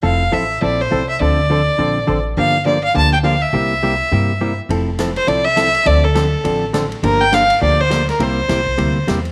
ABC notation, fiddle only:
X:1
M:4/4
L:1/8
Q:"Swing" 1/4=206
K:F
V:1 name="Fiddle"
f2 e2 d c2 e | d6- d z | f2 d f a g f e- | e6- e z |
z3 c d e3 | d A4 z3 | B g f2 d c2 B | c6 z2 |]